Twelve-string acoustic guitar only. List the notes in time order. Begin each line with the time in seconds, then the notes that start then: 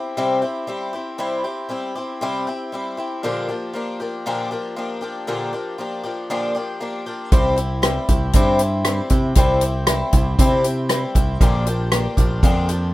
Already playing: C4 E4 G4
0.17 C3 G3 C4 E4 G4
0.42 C4 E4 G4
0.67 G3 C4 E4 G4
0.93 C4 E4 G4
1.18 C3 G3 C4 E4 G4
1.44 C4 E4 G4
1.69 G3 C4 E4 G4
1.95 C4 E4 G4
2.21 C3 G3 C4 E4 G4
2.47 C4 E4 G4
2.72 G3 C4 E4 G4
2.97 C4 E4 G4
3.23 A#2 D3 F3 A#3 D4 G4
3.48 F3 A#3 D4 G4
3.73 F3 A#3 D4 G4
4.00 F3 A#3 D4 G4
4.26 A#2 D3 F3 A#3 D4 G4
4.51 F3 A#3 D4 G4
4.76 F3 A#3 D4 G4
5.01 F3 A#3 D4 G4
5.27 A#2 D3 F3 A#3 D4 G4
5.53 F3 A#3 D4 G4
5.78 F3 A#3 D4 G4
6.04 F3 A#3 D4 G4
6.30 A#2 D3 F3 A#3 D4 G4
6.55 F3 A#3 D4 G4
6.80 F3 A#3 D4 G4
7.06 F3 A#3 D4 G4
7.32 C3 G3 C4 E4 G4
7.56 C4 E4 G4
7.82 G3 C4 E4 G4
8.09 C4 E4 G4
8.34 C3 G3 C4 E4 G4
8.60 C4 E4 G4
8.85 G3 C4 E4 G4
9.11 C4 E4 G4
9.37 C3 G3 C4 E4 G4
9.62 C4 E4 G4
9.88 G3 C4 E4 G4
10.14 C4 E4 G4
10.39 C3 G3 C4 E4 G4
10.64 C4 E4 G4
10.89 G3 C4 E4 G4
11.15 C4 E4 G4
11.41 A#2 D3 F3 A#3 D4 G4
11.66 F3 A#3 D4 G4
11.92 F3 A#3 D4 G4
12.17 F3 A#3 D4 G4
12.43 A#2 D3 F3 A#3 D4 G4
12.69 F3 A#3 D4 G4